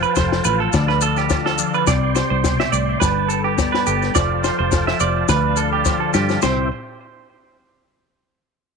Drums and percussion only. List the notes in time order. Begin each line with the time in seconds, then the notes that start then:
0.03 maracas
0.16 kick, snare, maracas
0.32 snare
0.44 maracas
0.73 kick, snare, maracas
0.89 snare
1.01 maracas
1.17 snare, maracas
1.30 kick, snare, maracas
1.46 snare
1.58 maracas
1.74 maracas
1.87 kick, snare, maracas
2.16 snare, maracas
2.44 kick, snare, maracas
2.60 snare
2.73 maracas
3.01 kick, snare, maracas
3.30 maracas
3.58 kick, snare, maracas
3.74 snare
3.87 maracas
4.02 snare, maracas
4.15 kick, snare, maracas
4.44 snare, maracas
4.72 kick, snare, maracas
4.88 snare
5.00 maracas
5.29 kick, snare, maracas
5.56 maracas
5.85 kick, snare, maracas
6.14 snare, maracas
6.29 snare, maracas
6.42 snare, floor tom, splash, maracas